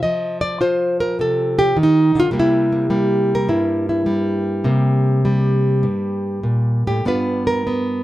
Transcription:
0.03 F3 D#5
0.41 D5
0.61 F4 C5
1.00 A#4
1.19 C3 A4
1.59 G4
1.77 D#3
1.83 D#4
2.15 D3
2.20 F4
2.31 C3 G3 A#3
2.39 E4
2.72 A#3
2.90 G3 A#3
3.35 A#4
3.48 G2 E4
3.89 E4
4.06 G3
4.64 C3 A#3
5.25 G3
5.83 G2
6.43 A#2
6.87 A2 G4
7.05 G2 B3 D4 F4 B4
7.47 A#4
7.67 B3

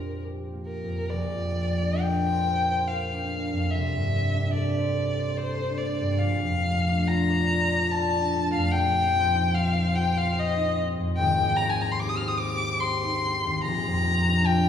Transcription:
Already playing: A#1 F2 A#3 D4 F4 G4 A#4 C5 D5
0.24 G4
0.53 A#3
0.67 A#4
0.84 F2
1.10 A#1 D5
1.35 F2
1.57 A#3
1.82 D4
2.01 A#4 G5
2.26 C5
2.48 A#4
2.71 C5
2.88 A#4 F5
3.13 D4
3.34 A#3
3.53 F2
3.71 E5
3.75 C2
3.96 G2
4.15 A#3
4.36 D4
4.54 A4 D5
4.76 C5
4.97 A4
5.19 C5
5.37 A4 C5
5.60 D4
5.77 A#3 D5
6.01 G2
6.19 A#1 F5
6.43 F2
6.66 A3
6.88 D4
7.08 F4 A#5
7.30 D5
7.52 F4
7.73 D5
7.91 F4 A5
8.15 D4
8.33 A3
8.54 F2 F5
8.72 A#1 G5
8.95 F2
9.15 C4
9.35 D#4
9.54 F4 F5
9.75 C5
9.95 F4 G5
10.17 C5 F5
10.37 F4 D#5
10.57 D#4
10.78 C4
10.98 F2
11.18 G#1 G5
11.40 D#2
11.56 A#5
11.60 C4
11.70 G#5
11.80 D#4 A#5
11.92 C6
12.00 G4 D6
12.09 D#6
12.17 F6
12.21 C5
12.28 D#6
12.39 G4 D6
12.64 C5
12.80 G4 C6
13.04 D#4
13.25 C4
13.45 D#2
13.64 A#1 A#5
13.87 F2
14.06 C4
14.28 D4
14.46 F4 G5

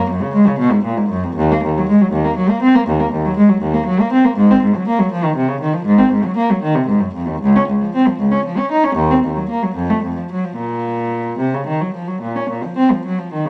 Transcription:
0.10 F#2
0.22 C#3
0.34 G#3
0.47 C#3
0.59 B2
0.71 G#2
0.84 A#2
0.97 G#2
1.09 F#2
1.24 F2
1.36 D#2
1.51 A#3
1.64 D#2
1.78 F#3
1.89 G#3
2.01 F#3
2.12 D#2
2.25 A#3
2.37 F#3
2.49 A#3
2.62 C4
2.75 A#3
2.87 D#2
3.00 A#3
3.13 D#2
3.25 F#3
3.37 G#3
3.49 F#3
3.61 D#2
3.74 A#3
3.86 F#3
4.00 A#3
4.12 C4
4.24 A#3
4.37 G#2
4.51 C4
4.63 G#2
4.75 F#3
4.88 A#3
4.99 F#3
5.12 F3
5.24 D#3
5.36 C3
5.48 C#3
5.61 D#3
5.73 F3
5.85 G#2
5.98 C4
6.12 G#2
6.24 F#3
6.36 A#3
6.50 F#3
6.62 D#3
6.75 C3
6.88 G#2
7.00 F#2
7.14 F2
7.27 D#2
7.41 C#2
7.56 C#4
7.69 C#2
7.82 F3
7.95 C4
8.08 F3
8.19 C#2
8.32 C#4
8.45 F3
8.58 C#4
8.71 D#4
8.84 C#4
8.96 D#2
9.11 C4
9.23 D#2
9.36 F#3
9.49 A#3
9.63 F#3
9.75 F2
9.90 A3
10.04 F2
10.17 F3
10.32 F#3
10.44 F3
10.56 A#2
11.39 C3
11.54 C#3
11.67 D#3
11.81 F#3
11.94 F3
12.07 F#3
12.22 A#2
12.36 C#4
12.50 A#2
12.64 F3
12.78 C4
12.91 F3
13.05 F#3
13.18 F3
13.33 D#3
13.46 C#3

